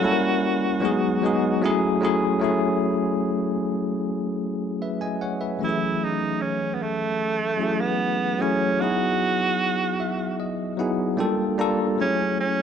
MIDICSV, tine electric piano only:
0, 0, Header, 1, 2, 480
1, 0, Start_track
1, 0, Tempo, 796813
1, 1460, Time_signature, 4, 2, 24, 8
1, 7602, End_track
2, 0, Start_track
2, 0, Title_t, "Tine electric piano"
2, 0, Program_c, 0, 4
2, 0, Control_c, 0, 64, 127
2, 9, Note_on_c, 0, 55, 86
2, 15, Note_on_c, 0, 58, 75
2, 23, Note_on_c, 0, 61, 78
2, 24, Note_on_c, 0, 64, 83
2, 31, Control_c, 0, 64, 0
2, 32, Note_on_c, 0, 69, 73
2, 66, Note_off_c, 0, 69, 0
2, 74, Note_on_c, 0, 70, 90
2, 131, Control_c, 0, 64, 127
2, 399, Note_off_c, 0, 55, 0
2, 402, Note_off_c, 0, 58, 0
2, 406, Note_off_c, 0, 61, 0
2, 406, Note_off_c, 0, 64, 0
2, 431, Note_off_c, 0, 70, 0
2, 484, Note_on_c, 0, 54, 88
2, 490, Note_on_c, 0, 56, 85
2, 497, Note_on_c, 0, 59, 84
2, 505, Note_on_c, 0, 63, 79
2, 509, Control_c, 0, 64, 0
2, 512, Note_on_c, 0, 68, 99
2, 618, Control_c, 0, 64, 127
2, 685, Note_off_c, 0, 54, 0
2, 687, Note_off_c, 0, 56, 0
2, 691, Note_off_c, 0, 59, 0
2, 695, Note_off_c, 0, 63, 0
2, 698, Note_off_c, 0, 68, 0
2, 735, Note_on_c, 0, 54, 76
2, 743, Note_on_c, 0, 56, 73
2, 747, Note_on_c, 0, 59, 69
2, 753, Note_on_c, 0, 63, 69
2, 758, Note_on_c, 0, 68, 91
2, 967, Note_off_c, 0, 54, 0
2, 974, Note_on_c, 0, 54, 90
2, 979, Note_on_c, 0, 57, 84
2, 982, Note_off_c, 0, 56, 0
2, 984, Note_off_c, 0, 59, 0
2, 987, Note_off_c, 0, 63, 0
2, 988, Note_on_c, 0, 61, 88
2, 989, Note_off_c, 0, 68, 0
2, 989, Control_c, 0, 64, 0
2, 991, Note_on_c, 0, 64, 81
2, 997, Note_on_c, 0, 68, 102
2, 1107, Control_c, 0, 64, 127
2, 1169, Note_off_c, 0, 54, 0
2, 1172, Note_off_c, 0, 57, 0
2, 1176, Note_off_c, 0, 61, 0
2, 1177, Note_off_c, 0, 64, 0
2, 1180, Note_off_c, 0, 68, 0
2, 1210, Note_on_c, 0, 54, 90
2, 1217, Note_on_c, 0, 57, 85
2, 1221, Note_on_c, 0, 61, 81
2, 1225, Note_on_c, 0, 64, 80
2, 1232, Note_on_c, 0, 68, 100
2, 1384, Note_off_c, 0, 54, 0
2, 1387, Note_off_c, 0, 57, 0
2, 1390, Note_off_c, 0, 61, 0
2, 1391, Note_off_c, 0, 64, 0
2, 1395, Note_off_c, 0, 68, 0
2, 1445, Note_on_c, 0, 54, 83
2, 1452, Note_on_c, 0, 57, 76
2, 1456, Note_on_c, 0, 61, 74
2, 1464, Note_on_c, 0, 64, 76
2, 1468, Control_c, 0, 64, 0
2, 1471, Note_on_c, 0, 68, 85
2, 1592, Control_c, 0, 64, 127
2, 2128, Note_off_c, 0, 54, 0
2, 2132, Note_off_c, 0, 57, 0
2, 2134, Note_off_c, 0, 61, 0
2, 2137, Note_off_c, 0, 64, 0
2, 2141, Note_off_c, 0, 68, 0
2, 2903, Note_on_c, 0, 76, 62
2, 2904, Note_on_c, 0, 71, 48
2, 3015, Note_off_c, 0, 76, 0
2, 3016, Note_off_c, 0, 71, 0
2, 3018, Note_on_c, 0, 80, 66
2, 3023, Note_on_c, 0, 75, 53
2, 3133, Note_off_c, 0, 80, 0
2, 3135, Note_off_c, 0, 75, 0
2, 3140, Note_on_c, 0, 78, 64
2, 3144, Note_on_c, 0, 73, 55
2, 3254, Note_off_c, 0, 78, 0
2, 3256, Note_off_c, 0, 73, 0
2, 3257, Note_on_c, 0, 76, 57
2, 3259, Note_on_c, 0, 71, 49
2, 3366, Note_on_c, 0, 54, 65
2, 3371, Note_on_c, 0, 57, 57
2, 3378, Note_on_c, 0, 61, 60
2, 3384, Note_on_c, 0, 52, 58
2, 3386, Control_c, 0, 64, 0
2, 3392, Note_on_c, 0, 67, 59
2, 3425, Note_off_c, 0, 67, 0
2, 3427, Note_on_c, 0, 68, 71
2, 3487, Note_off_c, 0, 76, 0
2, 3488, Note_off_c, 0, 71, 0
2, 3506, Control_c, 0, 64, 127
2, 4050, Note_off_c, 0, 54, 0
2, 4052, Note_off_c, 0, 57, 0
2, 4056, Note_off_c, 0, 61, 0
2, 4058, Note_off_c, 0, 52, 0
2, 4080, Note_off_c, 0, 68, 0
2, 4563, Note_on_c, 0, 54, 62
2, 4569, Note_on_c, 0, 57, 54
2, 4572, Note_on_c, 0, 61, 52
2, 4579, Note_on_c, 0, 64, 55
2, 4588, Note_on_c, 0, 68, 64
2, 4910, Note_off_c, 0, 54, 0
2, 4913, Note_off_c, 0, 57, 0
2, 4915, Note_off_c, 0, 61, 0
2, 4918, Note_off_c, 0, 64, 0
2, 4923, Note_off_c, 0, 68, 0
2, 5052, Note_on_c, 0, 54, 66
2, 5061, Note_on_c, 0, 57, 66
2, 5066, Note_on_c, 0, 61, 64
2, 5070, Note_on_c, 0, 64, 64
2, 5075, Note_on_c, 0, 68, 75
2, 5226, Note_off_c, 0, 54, 0
2, 5231, Note_off_c, 0, 57, 0
2, 5233, Note_off_c, 0, 61, 0
2, 5235, Note_off_c, 0, 64, 0
2, 5237, Note_off_c, 0, 68, 0
2, 5298, Note_on_c, 0, 54, 64
2, 5305, Note_on_c, 0, 59, 61
2, 5309, Control_c, 0, 64, 0
2, 5311, Note_on_c, 0, 63, 61
2, 5314, Note_on_c, 0, 64, 61
2, 5322, Note_on_c, 0, 68, 71
2, 5406, Control_c, 0, 64, 127
2, 5977, Note_off_c, 0, 54, 0
2, 5980, Note_off_c, 0, 59, 0
2, 5983, Note_off_c, 0, 63, 0
2, 5984, Note_off_c, 0, 64, 0
2, 5989, Note_off_c, 0, 68, 0
2, 6024, Note_on_c, 0, 76, 68
2, 6247, Note_off_c, 0, 76, 0
2, 6263, Note_on_c, 0, 75, 67
2, 6486, Note_off_c, 0, 75, 0
2, 6489, Note_on_c, 0, 54, 73
2, 6498, Note_on_c, 0, 59, 64
2, 6500, Note_on_c, 0, 63, 62
2, 6500, Note_on_c, 0, 78, 62
2, 6504, Note_on_c, 0, 64, 67
2, 6510, Note_on_c, 0, 68, 80
2, 6725, Note_off_c, 0, 78, 0
2, 6729, Note_on_c, 0, 55, 83
2, 6733, Note_on_c, 0, 58, 80
2, 6736, Note_off_c, 0, 54, 0
2, 6738, Note_on_c, 0, 79, 65
2, 6739, Note_on_c, 0, 62, 74
2, 6741, Note_off_c, 0, 59, 0
2, 6742, Note_off_c, 0, 63, 0
2, 6744, Note_off_c, 0, 64, 0
2, 6744, Note_on_c, 0, 65, 76
2, 6747, Note_off_c, 0, 68, 0
2, 6749, Note_on_c, 0, 69, 96
2, 6750, Control_c, 0, 64, 0
2, 6859, Control_c, 0, 64, 127
2, 6928, Note_off_c, 0, 55, 0
2, 6930, Note_off_c, 0, 58, 0
2, 6933, Note_off_c, 0, 62, 0
2, 6936, Note_off_c, 0, 65, 0
2, 6938, Note_off_c, 0, 69, 0
2, 6964, Note_off_c, 0, 79, 0
2, 6974, Note_on_c, 0, 55, 82
2, 6977, Note_on_c, 0, 58, 78
2, 6982, Note_on_c, 0, 82, 69
2, 6983, Note_on_c, 0, 62, 74
2, 6987, Note_on_c, 0, 65, 77
2, 6994, Note_on_c, 0, 69, 92
2, 7148, Note_off_c, 0, 55, 0
2, 7149, Note_off_c, 0, 58, 0
2, 7152, Note_off_c, 0, 62, 0
2, 7154, Note_off_c, 0, 65, 0
2, 7158, Note_off_c, 0, 69, 0
2, 7206, Note_off_c, 0, 82, 0
2, 7215, Note_on_c, 0, 54, 67
2, 7221, Note_on_c, 0, 56, 50
2, 7225, Note_on_c, 0, 61, 60
2, 7230, Note_on_c, 0, 64, 62
2, 7231, Control_c, 0, 64, 0
2, 7239, Note_on_c, 0, 68, 74
2, 7261, Note_off_c, 0, 56, 0
2, 7261, Note_on_c, 0, 57, 62
2, 7347, Control_c, 0, 64, 127
2, 7602, Note_off_c, 0, 54, 0
2, 7602, Note_off_c, 0, 57, 0
2, 7602, Note_off_c, 0, 61, 0
2, 7602, Note_off_c, 0, 64, 0
2, 7602, Note_off_c, 0, 68, 0
2, 7602, End_track
0, 0, End_of_file